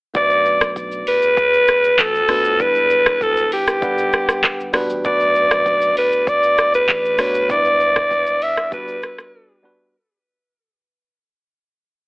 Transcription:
0.14 sub bass B1, tine electric piano A3 B3 D4 F#4 B4, alto saxophone D5, kick, shaker
0.30 shaker
0.45 shaker
0.61 kick, cross-stick, shaker
0.76 kick, shaker
0.92 shaker
1.07 alto saxophone B4, open hi-hat, shaker
1.22 shaker
1.37 kick, shaker
1.53 shaker
1.68 sub bass F#1, cross-stick, shaker
1.84 shaker
1.99 sub bass A1, alto saxophone A4, kick, clap, shaker
2.15 shaker
2.28 sub bass F#1, tine electric piano A3 B3 D4 F#4 B4, cross-stick, open hi-hat, shaker
2.45 shaker
2.59 sub bass E1, tine electric piano G3 B3 D4 E4 B4, alto saxophone B4, kick, shaker
2.75 shaker
2.90 shaker
3.06 kick, cross-stick, shaker
3.21 alto saxophone A4, kick, shaker
3.37 shaker
3.52 alto saxophone G4, open hi-hat, shaker
3.67 cross-stick, shaker
3.81 sub bass G1, tine electric piano G3 B3 D4 B4 F#5, kick, shaker
3.98 shaker
4.13 cross-stick, shaker
4.29 cross-stick, shaker
4.44 kick, cross-stick, clap, shaker
4.59 sub bass G1, shaker
4.73 tine electric piano G3 B3 D4 F#4 B4, cross-stick, open hi-hat, shaker
4.90 sub bass A1, shaker
5.04 sub bass B1, tine electric piano A3 B3 D4 F#4 B4, alto saxophone D5, kick, shaker
5.20 shaker
5.35 shaker
5.51 kick, cross-stick, shaker
5.66 kick, shaker
5.82 shaker
5.97 alto saxophone B4, open hi-hat, shaker
6.12 shaker
6.27 alto saxophone D5, kick, shaker
6.43 shaker
6.58 sub bass F#1, cross-stick, shaker
6.74 alto saxophone B4, shaker
6.89 sub bass A1, kick, clap, shaker
7.05 shaker
7.18 sub bass F#1, tine electric piano A3 B3 D4 F#4 C#5, cross-stick, open hi-hat, shaker
7.35 shaker
7.48 sub bass E1, tine electric piano G3 B3 D4 E4 B4, alto saxophone D5, kick, shaker
7.65 shaker
7.80 shaker
7.96 kick, cross-stick, mid tom, shaker
8.11 kick, shaker
8.27 shaker
8.42 alto saxophone E5, open hi-hat, shaker
8.57 cross-stick, shaker
8.71 sub bass G1, tine electric piano G3 B3 D4 F#4 B4, alto saxophone B4, kick, shaker
8.88 shaker
9.03 cross-stick, shaker
9.18 cross-stick, shaker
9.63 tine electric piano G3 B3 D4 F#4 B4

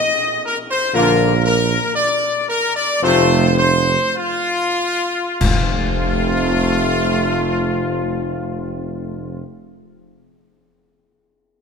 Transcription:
Already playing: trumpet section D#5
0.45 trumpet section A#4
0.71 trumpet section C5
0.93 tuba A#1, trombone section D3 A#3, french horn section A#3 F4, trumpet section A#4
1.44 trumpet section A#4
1.95 trumpet section D5
2.48 trumpet section A#4
2.76 trumpet section D5
3.02 tuba F1, trombone section C3 A3, french horn section C4 F4, trumpet section C5
3.58 trumpet section C5
4.17 trumpet section F4
5.40 tuba F1, trombone section C3 A3, french horn section C4 F4, trumpet section F4, concert bass drum, crash

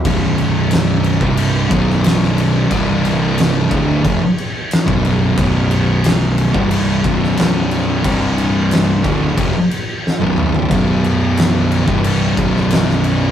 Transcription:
0.05 fingered electric bass B0, distorted electric guitar B1 F#2 B2, kick, crash
0.38 crash
0.71 snare, crash
1.04 crash
1.21 fingered electric bass C1, distorted electric guitar C2 G2 C3, kick
1.37 crash
1.70 fingered electric bass B0, distorted electric guitar B1 F#2 B2, kick, crash
1.90 snare
2.04 snare, crash
2.23 snare
2.38 crash
2.70 fingered electric bass C1, distorted electric guitar C2 G2 C3, kick, crash
3.05 crash
3.38 snare, crash
3.71 fingered electric bass D1, distorted electric guitar D2 A2 D3, kick, crash
4.03 fingered electric bass F1, distorted electric guitar F2 C3, kick, crash
4.38 crash
4.71 snare, crash
4.86 fingered electric bass B0, distorted electric guitar B1 F#2 B2, kick
5.05 crash
5.36 fingered electric bass B0, distorted electric guitar B1 F#2 B2, kick, crash
5.71 crash
6.04 snare, crash
6.38 crash
6.53 fingered electric bass C1, distorted electric guitar C2 G2 C3, kick
6.71 crash
7.03 fingered electric bass B0, distorted electric guitar B1 F#2 B2, kick, crash
7.24 snare
7.37 snare, crash
7.71 crash
8.03 fingered electric bass C1, distorted electric guitar C2 G2 C3, kick, crash
8.38 crash
8.71 snare, crash
9.03 fingered electric bass D1, distorted electric guitar D2 A2 D3, kick, crash
9.38 fingered electric bass F1, distorted electric guitar F2 C3, kick, crash
9.71 crash
10.07 snare
10.20 fingered electric bass B0, distorted electric guitar B1 F#2 B2, high tom
10.38 mid tom
10.55 floor tom
10.70 fingered electric bass B0, distorted electric guitar B1 F#2 B2, kick, crash
11.04 crash
11.37 snare, crash
11.71 crash
11.86 fingered electric bass C1, distorted electric guitar C2 G2 C3, kick
12.04 crash
12.36 fingered electric bass B0, distorted electric guitar B1 F#2 B2, kick, crash
12.56 snare
12.70 snare, crash
12.90 snare
13.04 crash

